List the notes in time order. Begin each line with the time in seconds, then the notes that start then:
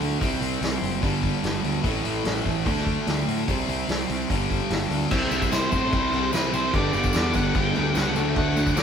Already playing: D3 A3 D4 F#4 A4
0.01 D2, open hi-hat
0.21 C2 C3 E3 G3 C4 E4 C5, kick, open hi-hat
0.41 C2, open hi-hat
0.61 C2 G3 C4 E4 C5, snare, open hi-hat
0.81 F#1 G3 C4 E4 C5, open hi-hat
1.01 G1 G2 D3 G3 D4 G4 B4, kick, open hi-hat
1.23 D4 G4 B4, kick, open hi-hat
1.43 G1 G3 D4 G4 B4, snare, open hi-hat
1.64 D2, open hi-hat
1.84 A1 A2 E3 A3 C4 E4 A4, kick, open hi-hat
2.05 A1, open hi-hat
2.24 A1 A3 C4 E4 A4, snare, open hi-hat
2.45 A1 A3 C4 E4 A4, kick, open hi-hat
2.64 D2 D3 A3 D4 F#4, kick, open hi-hat
2.69 A4
2.78 snare
2.87 D4 A4, kick, open hi-hat
3.07 D2 A3 D4 F#4 A4, snare, open hi-hat
3.28 A2, open hi-hat
3.48 C2 C3 E3 G3 C4 E4 C5, kick, open hi-hat
3.68 C2, open hi-hat
3.88 C2 G3 C4 E4 C5, snare, open hi-hat
4.08 C2 G3 C4 E4 C5, open hi-hat
4.28 G1 G2 D3 G3 D4 G4 B4, kick, open hi-hat
4.32 G3
4.49 D4 G4 B4, kick, open hi-hat
4.69 G1 G3 D4 G4 B4, snare, open hi-hat
4.90 D2, open hi-hat
5.10 C2 C3 E3 G3 C4 E4 G4 C5 E5, kick, crash
5.30 C2 G3 C4 E4 C5, tambourine, crash
5.42 kick, tambourine
5.51 C2 C3 E3 G3 C4 E4 G4 C5, snare, tambourine, crash
5.71 A2 C3 G3 C4 E4 C5, kick, tambourine, crash
5.91 C2 C3 G3 C4 E4 G4 C5 B5, kick, tambourine, crash
6.11 C2 G3 C4 E4 C5, tambourine, crash
6.32 C2 C3 E3 G3 C4 E4 G4 B4 C5, snare, tambourine, crash
6.53 C2 G3 C4 E4 C5, tambourine, crash
6.73 G1 G2 D3 G3 B3 D4 G4 A4 B4 D5, kick, crash
6.93 G1 G3 B3 D4, tambourine, crash
7.03 kick, tambourine
7.13 E2 D3 G3 B3 D4 G4 A4 B4, snare, tambourine, crash
7.33 G1 G2 D3 G3 A4 B4 F#5, kick, tambourine, crash
7.37 D4
7.54 G1 G2 D3 G3 B3 D4 G4 A4 B4 G5, kick, tambourine, crash
7.75 D2 G3 B3 D4 A4 B4, tambourine, crash
7.94 C#2 G2 D3 G3 B3 D4 G4 A4 B4 F#5, snare, tambourine, crash
8.05 tambourine
8.15 D2 D3 F#3 A3 D4 F#4 A4 D5, tambourine, crash
8.36 D2 D3 F#3 A3 D4 F#5, kick, crash
8.56 D2 F#3 A3 D4 F#4 D5, tambourine, crash
8.67 kick, tambourine
8.76 D2 D3 F#3 A3 D4 F#4 A4 D5, snare, tambourine, crash